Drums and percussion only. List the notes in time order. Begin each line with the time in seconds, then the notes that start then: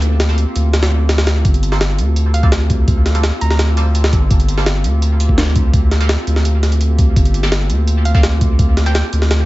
0.02 closed hi-hat
0.20 snare, closed hi-hat
0.38 closed hi-hat
0.56 closed hi-hat
0.74 snare, closed hi-hat
0.83 snare, closed hi-hat
1.09 snare, closed hi-hat
1.18 snare
1.27 snare, closed hi-hat
1.45 kick, closed hi-hat
1.54 closed hi-hat
1.63 closed hi-hat
1.72 snare
1.81 snare, closed hi-hat
1.98 closed hi-hat
2.16 closed hi-hat
2.34 closed hi-hat
2.43 kick
2.52 snare, closed hi-hat
2.70 kick, closed hi-hat
2.88 kick, closed hi-hat
3.06 snare, closed hi-hat
3.15 closed hi-hat
3.23 snare, closed hi-hat
3.41 closed hi-hat
3.50 snare
3.59 snare, closed hi-hat
3.77 closed hi-hat
3.95 closed hi-hat
4.04 snare
4.13 kick, closed hi-hat
4.31 kick, closed hi-hat
4.40 closed hi-hat
4.49 closed hi-hat
4.58 snare
4.66 snare, closed hi-hat
4.84 closed hi-hat
5.02 closed hi-hat
5.20 closed hi-hat
5.29 kick
5.38 snare, closed hi-hat
5.56 kick, closed hi-hat
5.74 kick, closed hi-hat
5.91 snare, closed hi-hat
6.01 closed hi-hat
6.09 snare, closed hi-hat
6.27 closed hi-hat
6.36 snare
6.45 closed hi-hat
6.63 snare, closed hi-hat
6.72 closed hi-hat
6.81 closed hi-hat
6.99 kick, closed hi-hat
7.16 kick, closed hi-hat
7.25 closed hi-hat
7.34 closed hi-hat
7.43 snare
7.52 snare, closed hi-hat
7.70 closed hi-hat
7.88 closed hi-hat
8.05 closed hi-hat
8.15 kick
8.23 snare, closed hi-hat
8.41 kick, closed hi-hat
8.59 kick, closed hi-hat
8.77 snare, closed hi-hat
8.86 closed hi-hat
8.95 snare, closed hi-hat
9.13 closed hi-hat
9.22 snare
9.31 snare, closed hi-hat